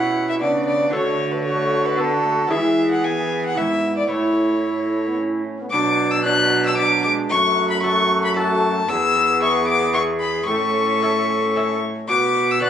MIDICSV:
0, 0, Header, 1, 6, 480
1, 0, Start_track
1, 0, Tempo, 530973
1, 844, Time_signature, 3, 2, 24, 8
1, 11478, End_track
2, 0, Start_track
2, 0, Title_t, "Violin"
2, 0, Program_c, 0, 40
2, 0, Note_on_c, 0, 78, 74
2, 243, Note_off_c, 0, 78, 0
2, 267, Note_on_c, 0, 76, 74
2, 310, Note_off_c, 0, 76, 0
2, 369, Note_on_c, 0, 74, 75
2, 589, Note_off_c, 0, 74, 0
2, 595, Note_on_c, 0, 74, 88
2, 835, Note_off_c, 0, 74, 0
2, 842, Note_on_c, 0, 73, 86
2, 1188, Note_on_c, 0, 71, 74
2, 1202, Note_off_c, 0, 73, 0
2, 1307, Note_off_c, 0, 71, 0
2, 1312, Note_on_c, 0, 73, 79
2, 1679, Note_on_c, 0, 71, 76
2, 1693, Note_off_c, 0, 73, 0
2, 1804, Note_on_c, 0, 69, 82
2, 1817, Note_off_c, 0, 71, 0
2, 2270, Note_on_c, 0, 76, 88
2, 2284, Note_off_c, 0, 69, 0
2, 2632, Note_off_c, 0, 76, 0
2, 2637, Note_on_c, 0, 78, 78
2, 2752, Note_on_c, 0, 80, 80
2, 2766, Note_off_c, 0, 78, 0
2, 3113, Note_off_c, 0, 80, 0
2, 3128, Note_on_c, 0, 78, 75
2, 3231, Note_on_c, 0, 76, 78
2, 3245, Note_off_c, 0, 78, 0
2, 3589, Note_off_c, 0, 76, 0
2, 3594, Note_on_c, 0, 74, 63
2, 3709, Note_off_c, 0, 74, 0
2, 3715, Note_on_c, 0, 73, 71
2, 4669, Note_off_c, 0, 73, 0
2, 5165, Note_on_c, 0, 86, 104
2, 5526, Note_on_c, 0, 88, 101
2, 5539, Note_off_c, 0, 86, 0
2, 5642, Note_off_c, 0, 88, 0
2, 5647, Note_on_c, 0, 90, 100
2, 6005, Note_off_c, 0, 90, 0
2, 6022, Note_on_c, 0, 88, 102
2, 6119, Note_off_c, 0, 88, 0
2, 6124, Note_on_c, 0, 86, 108
2, 6356, Note_off_c, 0, 86, 0
2, 6361, Note_on_c, 0, 86, 108
2, 6433, Note_off_c, 0, 86, 0
2, 6597, Note_on_c, 0, 85, 113
2, 6953, Note_off_c, 0, 85, 0
2, 6966, Note_on_c, 0, 83, 96
2, 7075, Note_off_c, 0, 83, 0
2, 7080, Note_on_c, 0, 85, 110
2, 7434, Note_off_c, 0, 85, 0
2, 7458, Note_on_c, 0, 83, 100
2, 7561, Note_off_c, 0, 83, 0
2, 7566, Note_on_c, 0, 81, 103
2, 8035, Note_on_c, 0, 88, 113
2, 8048, Note_off_c, 0, 81, 0
2, 8515, Note_off_c, 0, 88, 0
2, 8527, Note_on_c, 0, 85, 100
2, 8749, Note_off_c, 0, 85, 0
2, 8754, Note_on_c, 0, 86, 109
2, 8981, Note_off_c, 0, 86, 0
2, 8986, Note_on_c, 0, 85, 101
2, 9059, Note_off_c, 0, 85, 0
2, 9225, Note_on_c, 0, 83, 99
2, 9454, Note_off_c, 0, 83, 0
2, 9459, Note_on_c, 0, 85, 97
2, 10652, Note_off_c, 0, 85, 0
2, 10927, Note_on_c, 0, 86, 109
2, 11309, Note_on_c, 0, 88, 90
2, 11323, Note_off_c, 0, 86, 0
2, 11406, Note_off_c, 0, 88, 0
2, 11411, Note_on_c, 0, 90, 104
2, 11478, Note_off_c, 0, 90, 0
2, 11478, End_track
3, 0, Start_track
3, 0, Title_t, "Lute"
3, 0, Program_c, 1, 24
3, 0, Note_on_c, 1, 47, 47
3, 0, Note_on_c, 1, 66, 42
3, 0, Note_on_c, 1, 71, 42
3, 0, Note_on_c, 1, 74, 42
3, 331, Note_off_c, 1, 47, 0
3, 368, Note_on_c, 1, 47, 50
3, 794, Note_off_c, 1, 74, 0
3, 799, Note_off_c, 1, 66, 0
3, 806, Note_off_c, 1, 71, 0
3, 810, Note_off_c, 1, 47, 0
3, 810, Note_on_c, 1, 62, 50
3, 820, Note_on_c, 1, 66, 50
3, 835, Note_on_c, 1, 69, 51
3, 841, Note_on_c, 1, 50, 55
3, 1754, Note_off_c, 1, 62, 0
3, 1759, Note_off_c, 1, 66, 0
3, 1766, Note_on_c, 1, 62, 48
3, 1767, Note_off_c, 1, 69, 0
3, 1776, Note_on_c, 1, 66, 52
3, 1786, Note_on_c, 1, 69, 46
3, 2232, Note_off_c, 1, 62, 0
3, 2236, Note_on_c, 1, 59, 48
3, 2239, Note_off_c, 1, 50, 0
3, 2242, Note_off_c, 1, 66, 0
3, 2245, Note_on_c, 1, 64, 50
3, 2256, Note_off_c, 1, 69, 0
3, 2264, Note_on_c, 1, 68, 49
3, 2276, Note_on_c, 1, 52, 58
3, 3197, Note_off_c, 1, 52, 0
3, 3233, Note_on_c, 1, 44, 45
3, 3661, Note_off_c, 1, 59, 0
3, 3666, Note_off_c, 1, 64, 0
3, 3676, Note_off_c, 1, 68, 0
3, 3681, Note_off_c, 1, 44, 0
3, 3686, Note_on_c, 1, 57, 38
3, 3692, Note_on_c, 1, 64, 37
3, 3704, Note_on_c, 1, 69, 38
3, 3722, Note_on_c, 1, 45, 44
3, 4959, Note_off_c, 1, 45, 0
3, 5123, Note_off_c, 1, 57, 0
3, 5126, Note_off_c, 1, 64, 0
3, 5132, Note_off_c, 1, 69, 0
3, 5173, Note_on_c, 1, 47, 67
3, 5654, Note_on_c, 1, 62, 61
3, 5657, Note_on_c, 1, 74, 68
3, 6099, Note_off_c, 1, 62, 0
3, 6099, Note_off_c, 1, 74, 0
3, 6126, Note_on_c, 1, 62, 59
3, 6132, Note_on_c, 1, 74, 64
3, 6571, Note_off_c, 1, 62, 0
3, 6574, Note_off_c, 1, 74, 0
3, 6575, Note_off_c, 1, 47, 0
3, 6609, Note_on_c, 1, 42, 72
3, 7080, Note_on_c, 1, 66, 61
3, 7085, Note_on_c, 1, 69, 71
3, 7523, Note_off_c, 1, 66, 0
3, 7526, Note_off_c, 1, 69, 0
3, 7560, Note_on_c, 1, 66, 65
3, 7564, Note_on_c, 1, 69, 68
3, 8001, Note_off_c, 1, 42, 0
3, 8002, Note_off_c, 1, 66, 0
3, 8003, Note_off_c, 1, 69, 0
3, 8038, Note_on_c, 1, 40, 68
3, 8508, Note_on_c, 1, 59, 56
3, 8512, Note_on_c, 1, 68, 62
3, 8517, Note_on_c, 1, 76, 62
3, 8957, Note_off_c, 1, 59, 0
3, 8959, Note_off_c, 1, 68, 0
3, 8961, Note_off_c, 1, 76, 0
3, 8981, Note_on_c, 1, 59, 58
3, 8987, Note_on_c, 1, 68, 53
3, 8992, Note_on_c, 1, 76, 61
3, 9434, Note_off_c, 1, 59, 0
3, 9438, Note_off_c, 1, 68, 0
3, 9440, Note_off_c, 1, 76, 0
3, 9442, Note_off_c, 1, 40, 0
3, 9461, Note_on_c, 1, 45, 65
3, 9965, Note_on_c, 1, 61, 54
3, 9969, Note_on_c, 1, 69, 55
3, 9971, Note_on_c, 1, 76, 57
3, 10410, Note_off_c, 1, 61, 0
3, 10411, Note_off_c, 1, 69, 0
3, 10413, Note_off_c, 1, 76, 0
3, 10448, Note_on_c, 1, 61, 53
3, 10454, Note_on_c, 1, 69, 52
3, 10459, Note_on_c, 1, 76, 59
3, 10701, Note_off_c, 1, 45, 0
3, 10895, Note_off_c, 1, 61, 0
3, 10895, Note_off_c, 1, 69, 0
3, 10899, Note_off_c, 1, 76, 0
3, 10930, Note_on_c, 1, 47, 64
3, 11396, Note_on_c, 1, 59, 56
3, 11402, Note_on_c, 1, 66, 52
3, 11407, Note_on_c, 1, 74, 65
3, 11478, Note_off_c, 1, 47, 0
3, 11478, Note_off_c, 1, 59, 0
3, 11478, Note_off_c, 1, 66, 0
3, 11478, Note_off_c, 1, 74, 0
3, 11478, End_track
4, 0, Start_track
4, 0, Title_t, "Recorder"
4, 0, Program_c, 2, 74
4, 0, Note_on_c, 2, 64, 58
4, 377, Note_on_c, 2, 62, 56
4, 390, Note_off_c, 2, 64, 0
4, 846, Note_off_c, 2, 62, 0
4, 851, Note_on_c, 2, 66, 62
4, 1309, Note_off_c, 2, 66, 0
4, 1314, Note_on_c, 2, 66, 67
4, 2264, Note_on_c, 2, 68, 68
4, 2278, Note_off_c, 2, 66, 0
4, 3214, Note_off_c, 2, 68, 0
4, 3219, Note_on_c, 2, 64, 55
4, 3701, Note_off_c, 2, 64, 0
4, 3715, Note_on_c, 2, 64, 50
4, 4907, Note_off_c, 2, 64, 0
4, 5178, Note_on_c, 2, 62, 74
4, 5625, Note_off_c, 2, 62, 0
4, 5664, Note_on_c, 2, 62, 86
4, 6130, Note_off_c, 2, 62, 0
4, 6137, Note_on_c, 2, 62, 85
4, 6604, Note_off_c, 2, 62, 0
4, 6615, Note_on_c, 2, 66, 86
4, 7070, Note_off_c, 2, 66, 0
4, 7075, Note_on_c, 2, 66, 90
4, 7548, Note_off_c, 2, 66, 0
4, 7561, Note_on_c, 2, 66, 83
4, 8029, Note_off_c, 2, 66, 0
4, 8045, Note_on_c, 2, 68, 92
4, 9453, Note_off_c, 2, 68, 0
4, 9484, Note_on_c, 2, 69, 79
4, 10665, Note_off_c, 2, 69, 0
4, 10931, Note_on_c, 2, 66, 73
4, 11378, Note_off_c, 2, 66, 0
4, 11420, Note_on_c, 2, 66, 77
4, 11478, Note_off_c, 2, 66, 0
4, 11478, End_track
5, 0, Start_track
5, 0, Title_t, "Trombone"
5, 0, Program_c, 3, 57
5, 0, Note_on_c, 3, 61, 58
5, 359, Note_off_c, 3, 61, 0
5, 364, Note_on_c, 3, 59, 62
5, 840, Note_on_c, 3, 57, 55
5, 854, Note_off_c, 3, 59, 0
5, 1320, Note_off_c, 3, 57, 0
5, 1327, Note_on_c, 3, 57, 61
5, 1784, Note_off_c, 3, 57, 0
5, 1790, Note_on_c, 3, 59, 66
5, 1899, Note_off_c, 3, 59, 0
5, 2029, Note_on_c, 3, 57, 63
5, 2138, Note_off_c, 3, 57, 0
5, 2278, Note_on_c, 3, 56, 59
5, 2755, Note_on_c, 3, 59, 57
5, 2768, Note_off_c, 3, 56, 0
5, 3234, Note_off_c, 3, 59, 0
5, 3242, Note_on_c, 3, 59, 54
5, 3713, Note_off_c, 3, 59, 0
5, 3719, Note_on_c, 3, 57, 47
5, 4147, Note_off_c, 3, 57, 0
5, 4210, Note_on_c, 3, 57, 55
5, 4582, Note_on_c, 3, 59, 53
5, 4596, Note_off_c, 3, 57, 0
5, 4696, Note_on_c, 3, 61, 63
5, 4709, Note_off_c, 3, 59, 0
5, 5058, Note_off_c, 3, 61, 0
5, 5071, Note_on_c, 3, 59, 47
5, 5121, Note_off_c, 3, 59, 0
5, 5176, Note_on_c, 3, 54, 74
5, 5624, Note_off_c, 3, 54, 0
5, 5665, Note_on_c, 3, 54, 74
5, 6131, Note_off_c, 3, 54, 0
5, 6145, Note_on_c, 3, 54, 77
5, 6379, Note_on_c, 3, 56, 77
5, 6393, Note_off_c, 3, 54, 0
5, 6615, Note_on_c, 3, 57, 81
5, 6628, Note_off_c, 3, 56, 0
5, 7078, Note_off_c, 3, 57, 0
5, 7083, Note_on_c, 3, 57, 81
5, 7552, Note_off_c, 3, 57, 0
5, 7569, Note_on_c, 3, 57, 85
5, 8034, Note_on_c, 3, 59, 88
5, 8048, Note_off_c, 3, 57, 0
5, 9325, Note_off_c, 3, 59, 0
5, 9479, Note_on_c, 3, 61, 77
5, 10662, Note_off_c, 3, 61, 0
5, 10935, Note_on_c, 3, 59, 75
5, 11380, Note_off_c, 3, 59, 0
5, 11416, Note_on_c, 3, 59, 71
5, 11478, Note_off_c, 3, 59, 0
5, 11478, End_track
6, 0, Start_track
6, 0, Title_t, "Cello"
6, 0, Program_c, 4, 42
6, 0, Note_on_c, 4, 47, 62
6, 370, Note_on_c, 4, 49, 61
6, 383, Note_off_c, 4, 47, 0
6, 843, Note_off_c, 4, 49, 0
6, 848, Note_on_c, 4, 50, 68
6, 2250, Note_off_c, 4, 50, 0
6, 2276, Note_on_c, 4, 52, 69
6, 3237, Note_on_c, 4, 44, 59
6, 3250, Note_off_c, 4, 52, 0
6, 3715, Note_off_c, 4, 44, 0
6, 3720, Note_on_c, 4, 45, 54
6, 4969, Note_off_c, 4, 45, 0
6, 5173, Note_on_c, 4, 47, 83
6, 6576, Note_off_c, 4, 47, 0
6, 6618, Note_on_c, 4, 42, 86
6, 8013, Note_off_c, 4, 42, 0
6, 8036, Note_on_c, 4, 40, 89
6, 9449, Note_off_c, 4, 40, 0
6, 9479, Note_on_c, 4, 45, 79
6, 10721, Note_off_c, 4, 45, 0
6, 10929, Note_on_c, 4, 47, 80
6, 11478, Note_off_c, 4, 47, 0
6, 11478, End_track
0, 0, End_of_file